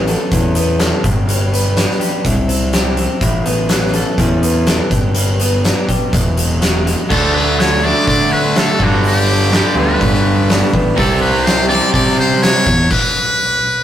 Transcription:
0.00 0.15 A1 medium
0.00 0.55 A2 medium
0.00 0.54 B3 medium
0.00 0.31 C#4 medium
0.08 0.78 A4 medium
0.08 closed hi-hat medium
0.32 0.92 E2 medium
0.32 1.04 C#4 medium
0.32 kick medium
0.32 closed hi-hat medium
0.55 1.04 B3 medium
0.55 closed hi-hat medium
0.79 1.03 A4 medium
0.79 snare loud
0.79 closed hi-hat medium
1.02 1.85 G1 medium
1.02 1.25 G2 medium
1.02 kick medium
1.02 closed hi-hat medium
1.26 2.24 G2 medium
1.26 closed hi-hat medium
1.52 2.25 B3 medium
1.52 closed hi-hat medium
1.76 2.25 D4 medium
1.76 snare loud
1.76 closed hi-hat medium
1.91 snare soft
2.00 2.24 G4 medium
2.00 closed hi-hat medium
2.25 3.06 C2 medium
2.25 3.20 C3 medium
2.25 kick loud
2.25 closed hi-hat medium
2.48 2.96 C4 medium
2.48 closed hi-hat medium
2.73 3.22 G4 medium
2.73 snare loud
2.73 closed hi-hat medium
2.97 3.21 C4 medium
2.97 closed hi-hat medium
3.21 4.03 A1 medium
3.21 4.42 A2 medium
3.21 kick loud
3.21 closed hi-hat medium
3.45 4.41 B3 medium
3.45 closed hi-hat medium
3.69 4.17 C#4 medium
3.69 snare loud
3.69 closed hi-hat medium
3.93 4.66 A4 medium
3.93 closed hi-hat medium
4.18 4.79 E2 medium
4.18 4.91 C#4 medium
4.18 kick medium
4.18 closed hi-hat medium
4.42 4.91 B3 medium
4.42 closed hi-hat medium
4.67 4.91 A4 medium
4.67 snare loud
4.67 closed hi-hat medium
4.90 5.72 G1 medium
4.90 5.15 G2 medium
4.90 kick medium
4.90 closed hi-hat medium
5.15 6.12 G2 medium
5.15 closed hi-hat medium
5.40 6.13 B3 medium
5.40 closed hi-hat medium
5.64 6.13 D4 medium
5.64 snare loud
5.64 closed hi-hat medium
5.89 6.13 G4 medium
5.89 kick medium
5.89 closed hi-hat medium
6.12 6.94 E1 medium
6.12 7.09 E2 medium
6.12 kick loud
6.12 closed hi-hat medium
6.37 6.85 G#3 medium
6.37 closed hi-hat medium
6.61 7.10 F#4 medium
6.61 snare loud
6.61 closed hi-hat medium
6.86 7.10 G#3 medium
6.86 closed hi-hat medium
7.09 7.91 D2 medium
7.09 7.81 D3 medium
7.09 7.56 D3 medium
7.09 7.82 A3 medium
7.09 7.83 D4 medium
7.09 7.35 A4 medium
7.09 kick loud
7.09 crash loud
7.34 7.82 A3 medium
7.34 7.61 B4 medium
7.57 8.30 D3 medium
7.57 7.86 C#5 medium
7.57 snare loud
7.57 open hi-hat medium
7.83 8.80 D3 medium
7.83 8.80 A3 medium
7.83 8.79 A3 medium
7.83 10.98 D4 medium
7.83 8.07 D5 loud
8.07 8.68 D3 medium
8.07 8.55 D4 medium
8.07 8.34 D5 loud
8.07 kick medium
8.07 open hi-hat medium
8.31 8.79 D3 medium
8.31 8.60 B4 medium
8.55 9.99 D4 medium
8.55 8.85 A4 medium
8.55 snare loud
8.55 open hi-hat medium
8.78 9.61 G1 medium
8.78 9.01 G2 medium
8.78 9.50 G2 medium
8.78 9.52 D3 medium
8.78 kick medium
8.83 9.55 G3 medium
8.83 9.06 F#4 medium
9.02 10.24 G2 medium
9.02 open hi-hat medium
9.06 9.74 G4 loud
9.28 10.49 D3 medium
9.51 10.71 G2 medium
9.51 10.72 D3 medium
9.51 10.24 G3 medium
9.51 10.73 G3 medium
9.51 snare loud
9.51 open hi-hat soft
9.75 9.96 D2 medium
9.75 10.72 B3 medium
9.75 10.70 B4 medium
10.00 10.61 G1 medium
10.00 10.49 D4 medium
10.00 kick loud
10.00 open hi-hat soft
10.14 snare soft
10.25 10.97 G3 medium
10.50 10.98 D4 medium
10.50 snare loud
10.50 open hi-hat medium
10.73 10.93 A1 medium
10.73 10.98 B3 medium
10.73 kick medium
10.95 11.79 C2 medium
10.95 11.68 C3 medium
10.95 11.68 G3 medium
10.95 11.67 C4 loud
10.95 11.20 A4 medium
10.95 kick loud
10.95 open hi-hat medium
11.21 11.47 B4 medium
11.46 11.68 C5 medium
11.46 snare loud
11.46 open hi-hat medium
11.68 12.66 C3 medium
11.68 12.65 G3 medium
11.68 12.64 C4 medium
11.68 11.92 D5 loud
11.94 12.55 C3 medium
11.94 12.16 D5 loud
11.94 kick loud
11.94 open hi-hat medium
12.07 snare soft
12.19 12.41 C5 medium
12.43 12.92 C#5 loud
12.43 snare loud
12.43 open hi-hat medium
12.66 12.87 E2 loud
12.66 kick loud
12.91 13.83 B4 loud
12.91 kick loud
12.91 crash loud

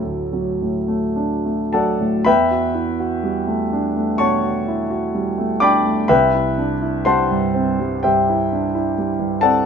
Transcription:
0.00 2.21 D2 soft
0.00 0.62 A2 soft
0.00 0.33 F#3 soft
0.00 0.88 A3 soft
0.00 1.16 D4 soft
0.00 1.67 A4 soft
0.00 1.71 D5 medium
0.33 0.77 F#3 soft
0.62 1.05 A2 soft
0.88 1.32 A3 soft
1.16 1.61 D4 soft
1.45 1.90 A3 soft
1.73 2.16 F#3 soft
1.73 2.23 A4 soft
1.73 2.23 D5 soft
1.73 2.23 F#5 soft
1.73 2.26 A5 medium
2.00 2.26 A2 soft
2.25 4.16 E2 soft
2.25 4.15 B4 medium
2.25 4.15 E5 medium
2.25 4.16 G5 medium
2.25 4.19 B5 medium
2.51 2.90 F#4 soft
2.75 2.99 E4 soft
3.00 3.38 F#4 soft
3.24 3.62 G3 soft
3.47 3.86 A3 soft
3.72 4.10 D4 soft
3.97 4.34 A3 soft
4.18 4.58 B2 soft
4.18 5.58 C#5 soft
4.18 5.58 F#5 soft
4.18 5.57 A5 soft
4.18 5.61 C#6 medium
4.44 4.82 F#4 soft
4.68 4.91 E4 soft
4.91 5.28 F#4 soft
5.15 5.52 G3 soft
5.38 5.75 A3 soft
5.60 5.99 D4 soft
5.60 6.05 D5 medium
5.60 6.06 G5 medium
5.60 6.06 B5 medium
5.60 6.08 D6 medium
5.85 6.09 A3 soft
6.08 8.00 C2 soft
6.08 7.02 B4 medium
6.08 7.02 E5 medium
6.08 7.02 G5 medium
6.08 7.05 B5 medium
6.34 6.72 E4 soft
6.58 6.82 D4 soft
6.82 7.21 E4 soft
7.05 7.45 G3 soft
7.05 8.00 C5 soft
7.05 8.00 F#5 soft
7.05 8.00 A5 soft
7.05 8.03 C6 medium
7.30 7.69 G2 soft
7.54 7.94 C4 soft
7.80 8.18 G3 soft
8.03 8.42 G2 soft
8.03 8.93 G4 soft
8.03 8.93 C5 soft
8.03 8.93 E5 soft
8.03 8.96 G5 medium
8.30 8.66 E4 soft
8.52 8.75 D4 soft
8.75 9.11 E4 soft
8.98 9.33 G3 soft
9.19 9.55 G2 soft
9.41 9.66 C4 soft
9.41 9.66 A4 medium
9.41 9.66 D5 medium
9.41 9.66 F#5 medium
9.41 9.66 A5 medium

